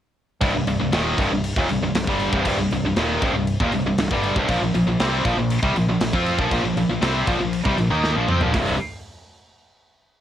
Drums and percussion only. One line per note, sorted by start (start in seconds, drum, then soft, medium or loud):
0.41 kick loud
0.41 crash medium
0.67 crash medium
0.92 snare loud
0.92 crash medium
1.18 kick loud
1.18 crash medium
1.44 crash medium
1.56 kick loud
1.69 crash medium
1.95 snare loud
1.95 crash medium
2.07 kick loud
2.19 crash medium
2.33 kick loud
2.45 kick loud
2.45 crash medium
2.71 crash medium
2.96 snare loud
2.96 crash medium
3.22 kick loud
3.22 crash medium
3.47 crash medium
3.60 kick loud
3.72 crash medium
3.98 snare loud
3.98 crash medium
4.11 kick loud
4.23 crash medium
4.36 kick loud
4.48 kick medium
4.48 crash medium
4.74 crash medium
5.00 snare loud
5.00 crash medium
5.25 kick loud
5.25 crash medium
5.50 crash medium
5.63 kick loud
5.76 crash medium
6.01 snare loud
6.01 crash medium
6.13 kick loud
6.26 crash medium
6.39 kick loud
6.51 kick medium
6.51 crash medium
6.77 crash medium
7.02 snare loud
7.02 crash medium
7.28 kick loud
7.28 crash medium
7.53 crash medium
7.65 kick loud
7.78 crash medium
8.04 snare medium
8.29 mid tom medium
8.41 floor tom medium
8.54 kick loud
8.54 snare medium
8.54 open hi-hat medium